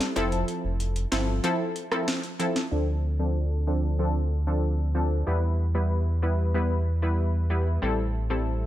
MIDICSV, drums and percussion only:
0, 0, Header, 1, 2, 480
1, 0, Start_track
1, 0, Tempo, 638298
1, 123, Time_signature, 4, 2, 24, 8
1, 6516, End_track
2, 0, Start_track
2, 0, Title_t, "Drums"
2, 4, Note_on_c, 9, 38, 73
2, 79, Note_off_c, 9, 38, 0
2, 122, Note_on_c, 9, 42, 73
2, 197, Note_off_c, 9, 42, 0
2, 242, Note_on_c, 9, 42, 52
2, 317, Note_off_c, 9, 42, 0
2, 362, Note_on_c, 9, 42, 73
2, 437, Note_off_c, 9, 42, 0
2, 602, Note_on_c, 9, 42, 72
2, 677, Note_off_c, 9, 42, 0
2, 721, Note_on_c, 9, 42, 60
2, 797, Note_off_c, 9, 42, 0
2, 842, Note_on_c, 9, 38, 112
2, 842, Note_on_c, 9, 42, 75
2, 917, Note_off_c, 9, 38, 0
2, 917, Note_off_c, 9, 42, 0
2, 1081, Note_on_c, 9, 42, 76
2, 1156, Note_off_c, 9, 42, 0
2, 1322, Note_on_c, 9, 42, 73
2, 1397, Note_off_c, 9, 42, 0
2, 1441, Note_on_c, 9, 37, 101
2, 1516, Note_off_c, 9, 37, 0
2, 1563, Note_on_c, 9, 38, 110
2, 1563, Note_on_c, 9, 42, 87
2, 1638, Note_off_c, 9, 38, 0
2, 1638, Note_off_c, 9, 42, 0
2, 1680, Note_on_c, 9, 42, 57
2, 1756, Note_off_c, 9, 42, 0
2, 1802, Note_on_c, 9, 42, 90
2, 1878, Note_off_c, 9, 42, 0
2, 1924, Note_on_c, 9, 38, 72
2, 1999, Note_off_c, 9, 38, 0
2, 6516, End_track
0, 0, End_of_file